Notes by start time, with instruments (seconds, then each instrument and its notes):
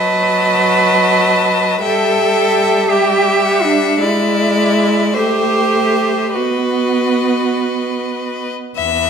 Already playing: viola F#3, cello B4, violin D#5 A5
1.82 viola G3, cello A4, violin E5 G5
2.89 cello G4, violin E5 G5
3.45 violin F#5
3.64 cello D4
3.98 viola G#3, cello E4, violin D5 E5
5.13 viola A3, cello G4, violin C5 E5
6.34 viola B3, cello F#4, violin B4 D#5
8.76 cello E2, violin B3 E5